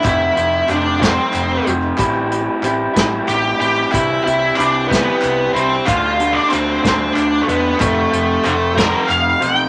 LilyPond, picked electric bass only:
\new Staff \with { instrumentName = "Picked electric bass" } { \clef bass \time 6/8 \key f \lydian \tempo 4. = 62 f,,8 f,,8 f,,4 f,,8 f,,8 | a,,4 a,,8 a,,8 a,,8 a,,8 | c,8 c,8 c,4 c,8 c,8 | d,4 d,8 d,8 d,8 e,8 |
f,,8 f,,8 f,,4 f,,8 b,,8 | }